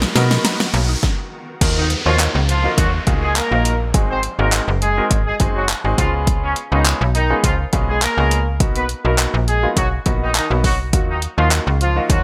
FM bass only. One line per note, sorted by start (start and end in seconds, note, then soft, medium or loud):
0.16 0.38 B2 medium
0.74 0.96 B1 loud
1.61 1.95 D#2 loud
2.06 2.28 D#2 medium
2.35 2.68 C#2 loud
2.78 3.00 D#2 loud
3.07 3.41 C#2 medium
3.51 3.96 A#1 medium
3.94 4.28 G#1 loud
4.39 4.61 G#1 medium
4.68 5.01 F#1 loud
5.11 5.33 G#1 loud
5.40 5.74 F#1 medium
5.84 5.95 G#1 medium
5.98 6.55 C#2 loud
6.72 6.94 C#2 medium
7.01 7.34 B1 loud
7.44 7.66 C#2 loud
7.73 8.07 B1 medium
8.18 8.62 C#2 medium
8.60 8.94 B1 loud
9.05 9.27 B1 medium
9.34 9.67 A#1 loud
9.77 9.99 B1 loud
10.06 10.40 A#1 medium
10.51 10.95 B1 medium
10.93 11.27 D#2 loud
11.38 11.60 D#2 medium
11.67 12.00 C#2 loud
12.10 12.23 D#2 medium